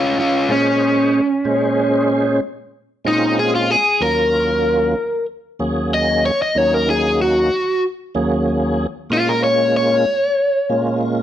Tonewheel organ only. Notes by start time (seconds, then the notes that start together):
0.49 A#2 G#3 C#4 G#4 C5
1.44 A#2 G#3 C#4 G#4 C5
3.05 A#2 G#3 C4 C#4 F4
4.00 D#2 F#3 A#3 C#4 F4
5.59 D#2 F#3 A#3 C#4 G#4
6.55 D#2 F#3 A#3 C#4 D#4
8.15 D#2 F#3 A#3 C#4 G#4
9.10 A#2 G#3 A#3 C#4 F4
10.69 A#2 G#3 A#3 C#4 F4